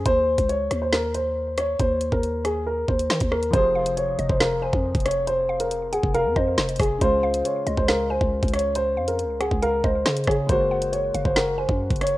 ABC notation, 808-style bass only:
X:1
M:4/4
L:1/16
Q:1/4=138
K:Fphr
V:1 name="808-style bass" clef=bass
E,,3 D,,3 E,,8- E,,2 | E,,3 E,,6- E,, E,,2 E, E,,3 | F,,,6 F,,, F,,,4 F,,2 F,,,3- | F,,,6- F,,, F,,,2 F,, F,,2 F,,,2 F,,,2 |
D,,4 z2 D,, D,,4 D,,2 D,,3- | D,,2 F,,2- F,,/2 D,,2- D,,/2 D,,3 D,,2 D,2 D,2 | G,,,6 G,,, G,,,4 G,,2 G,,,3 |]